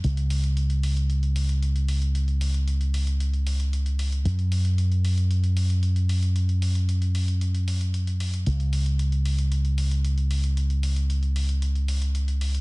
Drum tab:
HH |xxoxxxoxxxoxxxox|xxoxxxoxxxoxxxox|xxoxxxoxxxoxxxox|xxoxxxoxxxoxxxox|

HH |xxoxxxoxxxoxxxox|xxoxxxoxxxoxxxox|